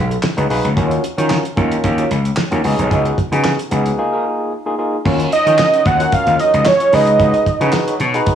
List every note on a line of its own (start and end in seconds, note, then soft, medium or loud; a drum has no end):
0.00 0.16 B1 loud
0.11 muted clean electric guitar stroke soft
0.11 closed hi-hat soft
0.23 muted clean electric guitar stroke soft
0.23 snare loud
0.23 clap medium
0.37 0.46 C#2 medium
0.37 0.45 D#4 medium
0.37 0.45 F#4 medium
0.37 0.45 G#4 medium
0.37 0.45 B4 medium
0.37 muted clean electric guitar stroke soft
0.37 closed hi-hat soft
0.50 0.60 B1 medium
0.50 0.67 D#4 medium
0.50 0.67 F#4 medium
0.50 0.67 G#4 medium
0.50 0.68 B4 loud
0.50 open hi-hat medium
0.64 0.73 C#2 medium
0.64 muted clean electric guitar stroke soft
0.64 closed hi-hat medium
0.76 0.96 D#2 loud
0.76 1.01 F#3 medium
0.76 1.02 C#4 medium
0.76 1.02 F4 medium
0.76 1.02 F#4 medium
0.76 1.02 A#4 medium
0.76 kick loud
0.76 closed hi-hat medium
0.91 closed hi-hat soft
1.03 muted clean electric guitar stroke soft
1.03 closed hi-hat medium
1.17 1.37 D#3 loud
1.17 1.30 F#3 soft
1.17 1.42 C#4 medium
1.17 1.29 C#4 medium
1.17 1.29 F4 medium
1.17 1.43 F4 medium
1.17 1.43 F#4 medium
1.17 1.43 A#4 medium
1.17 closed hi-hat medium
1.30 snare loud
1.30 clap medium
1.44 muted clean electric guitar stroke soft
1.44 closed hi-hat medium
1.56 1.76 D#2 loud
1.56 1.73 F#3 medium
1.56 2.15 C#4 medium
1.56 1.71 C#4 medium
1.56 2.15 F4 medium
1.56 1.70 F4 loud
1.56 2.16 F#4 medium
1.56 2.16 A#4 medium
1.56 kick loud
1.56 closed hi-hat medium
1.71 muted clean electric guitar stroke soft
1.71 closed hi-hat medium
1.84 2.03 D#2 loud
1.84 muted clean electric guitar stroke soft
1.84 kick loud
1.84 closed hi-hat loud
1.98 2.10 F#3 medium
1.98 2.10 C#4 medium
1.98 2.10 F4 loud
1.98 closed hi-hat medium
2.11 2.30 C#2 medium
2.11 muted clean electric guitar stroke soft
2.11 closed hi-hat medium
2.25 muted clean electric guitar stroke soft
2.25 closed hi-hat soft
2.37 muted clean electric guitar stroke soft
2.37 snare loud
2.37 clap medium
2.51 2.61 D#2 medium
2.51 2.59 C#4 medium
2.51 2.59 F4 medium
2.51 2.60 F#4 medium
2.51 2.60 A#4 medium
2.51 closed hi-hat soft
2.64 2.74 C#2 medium
2.64 3.18 B3 medium
2.64 3.18 D#4 medium
2.64 3.18 F#4 medium
2.64 3.18 G#4 loud
2.64 open hi-hat medium
2.79 2.91 B1 medium
2.79 muted clean electric guitar stroke medium
2.79 closed hi-hat medium
2.91 3.10 C#2 loud
2.91 3.16 D#4 medium
2.91 3.16 F#4 medium
2.91 3.16 B4 medium
2.91 kick loud
2.91 closed hi-hat medium
3.05 closed hi-hat soft
3.18 muted clean electric guitar stroke soft
3.18 kick medium
3.18 closed hi-hat medium
3.32 3.51 C#3 medium
3.32 3.57 B3 medium
3.32 3.57 D#4 medium
3.32 3.44 D#4 medium
3.32 3.57 F#4 medium
3.32 3.44 F#4 medium
3.32 3.57 G#4 medium
3.32 3.43 B4 medium
3.32 closed hi-hat medium
3.44 snare loud
3.44 clap medium
3.59 muted clean electric guitar stroke soft
3.59 closed hi-hat medium
3.71 3.90 C#2 medium
3.71 3.98 B3 medium
3.71 3.97 D#4 medium
3.71 3.87 D#4 medium
3.71 3.98 F#4 medium
3.71 3.85 F#4 medium
3.71 3.98 G#4 medium
3.71 3.85 B4 medium
3.71 closed hi-hat medium
3.86 muted clean electric guitar stroke medium
3.86 closed hi-hat medium
3.98 4.52 A#3 medium
3.98 4.52 D#4 medium
3.98 4.52 F4 medium
3.98 4.52 G#4 medium
3.98 muted clean electric guitar stroke soft
4.12 4.24 D#4 medium
4.12 4.25 G#4 medium
4.12 4.25 A#4 medium
4.25 muted clean electric guitar stroke soft
4.39 muted clean electric guitar stroke soft
4.52 muted clean electric guitar stroke soft
4.66 4.74 A#3 medium
4.66 4.74 D#4 medium
4.66 4.74 F4 medium
4.66 4.74 G#4 loud
4.66 muted clean electric guitar stroke soft
4.78 4.96 A#3 medium
4.78 4.96 D#4 medium
4.78 4.96 F4 medium
4.78 4.96 G#4 medium
4.93 muted clean electric guitar stroke medium
5.05 5.24 D#2 loud
5.05 5.21 F#3 medium
5.05 5.30 C#4 medium
5.05 5.19 C#4 medium
5.05 5.30 F4 medium
5.05 5.18 F4 medium
5.05 5.31 F#4 medium
5.05 5.31 A#4 medium
5.05 kick loud
5.05 crash medium
5.20 muted clean electric guitar stroke soft
5.20 closed hi-hat soft
5.32 5.88 D#5 loud
5.32 muted clean electric guitar stroke soft
5.32 closed hi-hat medium
5.46 5.55 D#3 medium
5.46 5.58 F#3 soft
5.46 5.79 C#4 medium
5.46 5.58 C#4 medium
5.46 5.79 F4 medium
5.46 5.58 F#4 medium
5.46 5.79 F#4 medium
5.46 5.79 A#4 medium
5.46 closed hi-hat medium
5.58 muted clean electric guitar stroke soft
5.58 snare loud
5.58 clap medium
5.73 5.84 F#3 medium
5.73 5.85 C#4 medium
5.73 5.86 F#4 medium
5.73 closed hi-hat medium
5.86 6.05 D#2 medium
5.86 5.98 F#3 medium
5.86 5.99 C#4 medium
5.86 5.99 F#4 medium
5.86 6.15 F#5 loud
5.86 kick loud
5.86 closed hi-hat medium
6.00 6.66 C#4 medium
6.00 6.66 F4 medium
6.00 6.66 F#4 medium
6.00 6.66 A#4 medium
6.00 muted clean electric guitar stroke soft
6.00 closed hi-hat medium
6.12 6.42 F5 loud
6.12 muted clean electric guitar stroke soft
6.12 kick loud
6.12 closed hi-hat loud
6.27 6.36 D#2 medium
6.27 6.38 F#3 medium
6.27 6.38 C#4 medium
6.27 6.38 F4 medium
6.27 closed hi-hat medium
6.39 6.55 F#3 medium
6.39 6.53 C#4 medium
6.39 6.53 F#4 loud
6.39 6.69 D#5 medium
6.39 closed hi-hat medium
6.54 6.63 C#2 medium
6.54 muted clean electric guitar stroke medium
6.54 closed hi-hat medium
6.65 6.96 C#5 loud
6.65 muted clean electric guitar stroke soft
6.65 snare loud
6.65 clap medium
6.80 6.95 F#3 medium
6.80 6.93 C#4 medium
6.80 6.93 F4 medium
6.80 closed hi-hat medium
6.93 7.31 C#2 loud
6.93 7.46 D#4 medium
6.93 7.06 D#4 medium
6.93 7.46 F#4 medium
6.93 7.06 F#4 medium
6.93 7.47 G#4 medium
6.93 7.47 B4 medium
6.93 7.06 B4 medium
6.93 7.74 D#5 medium
6.93 open hi-hat medium
7.07 muted clean electric guitar stroke soft
7.07 closed hi-hat medium
7.20 7.36 D#4 medium
7.20 7.34 F#4 medium
7.20 7.33 B4 loud
7.20 kick loud
7.20 closed hi-hat medium
7.34 muted clean electric guitar stroke soft
7.34 closed hi-hat soft
7.46 muted clean electric guitar stroke soft
7.46 kick loud
7.46 closed hi-hat medium
7.60 7.70 C#3 medium
7.60 7.93 D#4 medium
7.60 7.72 D#4 medium
7.60 7.94 F#4 medium
7.60 7.72 F#4 medium
7.60 7.94 G#4 medium
7.60 7.94 B4 loud
7.60 7.72 C#5 medium
7.60 closed hi-hat medium
7.72 muted clean electric guitar stroke soft
7.72 snare loud
7.72 clap medium
7.87 7.99 D#4 medium
7.87 7.99 F#4 medium
7.87 8.00 C#5 loud
7.87 closed hi-hat medium
8.00 8.19 B2 loud
8.00 8.13 D#4 medium
8.00 8.13 F#4 medium
8.00 8.13 C#5 medium
8.00 closed hi-hat medium
8.14 8.35 D#4 medium
8.14 8.35 F#4 medium
8.14 8.35 G#4 medium
8.14 8.35 B4 loud
8.14 muted clean electric guitar stroke medium
8.14 closed hi-hat medium
8.26 muted clean electric guitar stroke soft
8.26 kick loud
8.26 closed hi-hat loud